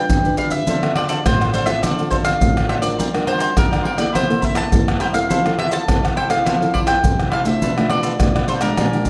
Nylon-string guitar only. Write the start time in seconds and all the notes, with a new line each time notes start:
Already playing: D4 F4 B4
0.10 D3
0.24 D4 F4 B4
0.67 D3 C4 F4 A4
0.83 C4 F4 A4
1.25 A2 C4 F4 A4
1.66 C4 F4 A4
1.83 D3
1.99 C4 F4 A4
2.41 A2 C4 F4 A4
2.82 D4 F4 A#4
2.99 G3
3.14 D4 F4 A#4
3.57 D3 D4 F4 A#4
3.98 A#3 E4 A4
4.15 C3
4.30 A#3 E4 A4
4.73 G2 A#3 E4 A4
5.14 C4 E4 A4
5.30 F3
5.46 C4 E4 A4
5.89 C3 C4 E4 A4
6.29 C4 E4 A4
6.46 F3
6.62 C4 E4 A4
7.04 C3 C4 E4 A4
7.45 A3 D4 F4
7.63 B2
7.77 A3 D4 F4
8.20 B2 A3 D4 F4
8.61 G#3 D4 G4
8.78 A#2
8.93 G#3 D4 G4